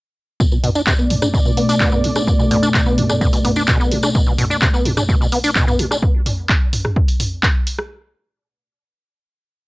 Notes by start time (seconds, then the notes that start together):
0.40 B2 A3 D5, kick, tambourine
0.52 B2, tambourine
0.63 B2, mid tom, open hi-hat
0.75 D4, tambourine
0.87 C3, kick, clap, tambourine
0.99 B3, tambourine
1.10 A2, mid tom, open hi-hat
1.22 D4, cross-stick, mid tom, tambourine
1.34 B2, kick, tambourine
1.45 B2, tambourine
1.57 B3, open hi-hat
1.69 D4, open hi-hat, tambourine
1.80 B2, kick, clap, tambourine
1.92 B3, mid tom, tambourine
2.04 A2, open hi-hat
2.16 D4, cross-stick, tambourine
2.27 B2, kick, tambourine
2.39 B2, tambourine
2.51 B2, mid tom, open hi-hat
2.63 D4, tambourine
2.74 C3, kick, clap, tambourine
2.86 B3, tambourine
2.98 A2, mid tom, open hi-hat
3.09 D4, cross-stick, mid tom, tambourine
3.21 B2, kick, tambourine
3.33 B2, open hi-hat, tambourine
3.45 B3, mid tom, open hi-hat
3.56 D4, tambourine
3.67 B2, kick, clap, tambourine
3.80 B3, tambourine
3.92 A2, open hi-hat
4.03 D4, cross-stick, tambourine
4.15 B2, kick, tambourine
4.26 B2, tambourine
4.38 B2, mid tom, open hi-hat
4.50 D4, tambourine
4.62 C3, kick, clap, tambourine
4.74 B3, tambourine
4.85 A2, mid tom, open hi-hat
4.97 D4, cross-stick, mid tom, tambourine
5.09 B2, kick, tambourine
5.21 B2, tambourine
5.32 B3, open hi-hat
5.44 D4, open hi-hat, tambourine
5.55 B2, kick, clap, tambourine
5.67 B3, mid tom, tambourine
5.79 A2, open hi-hat
5.91 D4, cross-stick, tambourine
6.03 kick
6.26 mid tom, open hi-hat
6.49 kick, clap
6.73 mid tom, open hi-hat
6.85 cross-stick, mid tom
6.96 kick
7.08 open hi-hat
7.20 mid tom, open hi-hat
7.43 kick, clap
7.67 open hi-hat
7.79 cross-stick